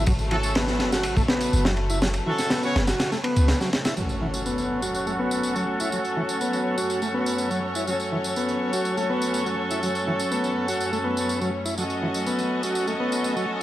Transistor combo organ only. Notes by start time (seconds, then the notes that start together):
0.07 F#3
0.31 E3
0.56 B3
0.92 F#4
1.17 A3
1.29 B3
1.66 F#3
1.90 E4
2.02 F#3
2.27 E3
2.51 B3
2.87 F#4
3.12 A3
3.24 B3
3.61 F#3
3.85 E4
3.97 F#3
4.21 E3
4.46 B3
4.82 F#4
5.07 A3
5.19 B3
5.56 F#3
5.80 E4
5.93 F#3
6.17 E3
6.41 B3
6.78 F#4
7.02 A3
7.14 B3
7.51 F#3
7.76 E4
7.87 F#3
8.12 E3
8.37 B3
8.73 F#4
8.97 A3
9.10 B3
9.46 F#3
9.71 E4
9.83 F#3
10.07 E3
10.31 B3
10.68 F#4
10.92 A3
11.04 B3
11.41 F#3
11.65 E4
11.78 F#3
12.02 E3
12.26 B3
12.64 F#4
12.88 A3
13.00 B3
13.36 F#3